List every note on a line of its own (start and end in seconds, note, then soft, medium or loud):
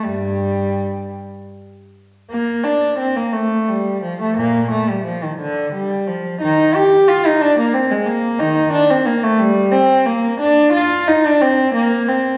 0.05 1.14 G2 medium
0.05 1.18 G3 medium
2.30 2.62 A#3 medium
2.64 2.99 D4 medium
2.99 3.16 C4 medium
3.16 3.34 A#3 medium
3.33 3.68 A3 medium
3.68 4.03 G3 medium
4.03 4.19 F3 medium
4.21 4.37 A3 medium
4.37 4.69 A#2 medium
4.37 4.71 A#3 medium
4.71 4.88 A3 medium
4.89 5.06 G3 medium
5.05 5.22 F3 medium
5.23 5.40 D#3 medium
5.40 5.73 D3 medium
5.73 6.07 G3 medium
6.07 6.42 F3 medium
6.41 6.73 D#3 medium
6.41 6.74 D#4 medium
6.75 7.09 G4 medium
7.09 7.25 F4 medium
7.26 7.42 D#4 medium
7.41 7.58 D4 medium
7.59 7.75 A#3 medium
7.74 7.91 C4 medium
7.91 8.07 G#3 medium
8.06 8.39 A#3 medium
8.40 8.70 D#3 medium
8.40 8.73 D#4 medium
8.73 8.89 D4 medium
8.90 9.06 C4 medium
9.06 9.22 A#3 medium
9.23 9.40 A3 medium
9.39 9.72 G3 medium
9.72 10.06 C4 medium
10.06 10.39 A#3 medium
10.40 10.73 D4 medium
10.73 11.07 F4 medium
11.08 11.25 D#4 medium
11.26 11.42 D4 medium
11.41 11.75 C4 medium
11.75 12.08 A#3 medium
12.09 12.37 C4 medium